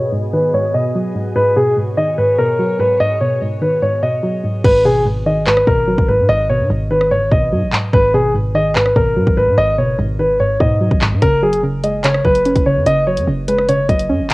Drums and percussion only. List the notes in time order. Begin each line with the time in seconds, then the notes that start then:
4.64 kick, crash
5.47 clap
5.57 cross-stick
5.67 kick
5.98 kick
7.01 cross-stick
7.32 kick
7.73 clap
7.93 kick
8.76 clap
8.86 cross-stick
8.96 kick
9.27 kick
10.60 kick
10.91 kick
11.01 clap
11.22 kick, closed hi-hat
11.53 closed hi-hat
11.84 closed hi-hat
12.04 clap, closed hi-hat
12.14 cross-stick
12.25 kick
12.35 closed hi-hat
12.45 closed hi-hat
12.56 kick, closed hi-hat
12.86 closed hi-hat
13.17 closed hi-hat
13.48 closed hi-hat
13.58 cross-stick
13.69 closed hi-hat
13.89 kick, closed hi-hat
13.99 closed hi-hat
14.30 clap, closed hi-hat